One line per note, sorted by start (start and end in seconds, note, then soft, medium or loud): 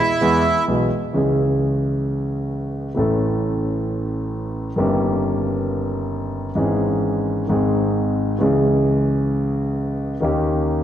0.00 0.65 E4 medium
0.00 0.63 E5 medium
0.21 0.41 E2 medium
0.21 0.41 E3 medium
0.21 0.41 G#3 medium
0.21 0.41 B3 medium
0.21 0.41 G#4 medium
0.67 0.87 B1 soft
0.67 0.87 B2 soft
0.67 0.87 E3 soft
0.67 0.87 G#3 soft
0.67 0.88 B3 soft
0.67 0.87 G#4 soft
1.13 2.88 C#2 soft
1.13 2.88 C#3 soft
1.13 2.87 E3 soft
1.13 2.88 G#3 soft
1.13 2.88 C#4 soft
1.13 2.89 G#4 soft
2.94 4.69 A1 soft
2.94 4.69 A2 soft
2.94 4.67 E3 soft
2.94 4.68 A3 soft
2.94 4.69 C#4 soft
2.99 4.70 A4 soft
4.76 6.48 G1 medium
4.76 6.48 G2 medium
4.76 6.48 D#3 soft
4.76 6.48 A#3 soft
4.76 6.49 C#4 soft
4.80 6.49 G4 medium
6.55 7.43 G#1 medium
6.55 7.44 G#2 medium
6.55 7.43 E3 soft
6.55 7.43 G#3 soft
6.55 7.44 C#4 soft
6.55 7.44 G#4 soft
7.47 8.36 G#1 medium
7.47 8.36 G#2 medium
7.47 8.35 D#3 soft
7.47 8.35 G#3 soft
7.47 8.36 C4 soft
7.52 8.37 G#4 medium
8.39 10.13 C#2 medium
8.39 10.13 C#3 soft
8.39 10.12 E3 soft
8.39 10.13 G#3 soft
8.39 10.14 C#4 soft
8.39 10.14 G#4 soft
10.20 10.84 D#2 medium
10.20 10.84 D#3 medium
10.20 10.84 A#3 soft
10.20 10.84 C#4 soft
10.24 10.84 G4 soft